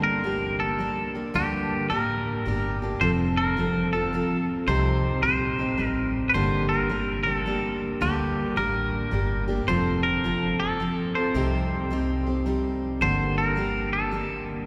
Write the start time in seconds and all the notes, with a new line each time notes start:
Already playing: G1 G2 D3 G3 A#3 D4 G4
0.04 A#4
0.24 G3 A#3 D4 G4
0.60 A4
0.79 G3 A#3 D4 G4
1.15 G3 A#3 D4 G4
1.34 D2 G2 D3 G3 A#3 D4 G4
1.89 A1 G3 A#3 D4 G4 A#4
2.45 G1 G3 A#3 D4 G4
2.82 G3 A#3 D4 G4
3.01 F1 F3 C4 F4 A4 C5
3.37 A#4
3.57 F3 C4 F4 A4
3.93 C4 F4 A4
4.13 F3 C4 F4 A4
4.67 C2 C3 G3 C4 D#4 G4 C5
5.22 A#1 G3 C4 D#4 G4 C5
5.59 C4 D#4 G4
5.78 A1 G3 C4 D#4 G4
5.86 A#4
6.29 B4
6.33 G1 G2 D3 G3 A#3 D4 G4 C5
6.69 A#4
6.89 G3 A#3 D4 G4
7.23 D4 G4 A4
7.27 G3 A#3
7.46 G3 A#3 D4 G4
8.01 D2 G2 D3 G3 A#3 D4 G4
8.57 A1 G3 A#3 D4 G4 A#4
9.11 G1 G3 A#3 D4 G4
9.48 G3 A#3 D4 G4
9.68 F1 F3 C4 F4 A4 C5
10.03 A#4
10.24 F3 C4 F4 A4
10.60 A4
10.80 F3 C4 F4 A4
11.15 C4 F4 A4 C5
11.34 C2 C3 G3 C4 D#4 G4
11.90 G3 C4 D#4 G4
12.26 C4 D#4 G4
12.46 G3 C4 D#4 G4
13.01 G1 G2 D3 G3 A#3 D4 G4 C5
13.38 A#4
13.56 G3 A#3 D4 G4
13.93 A4
14.11 G3 A#3 D4 G4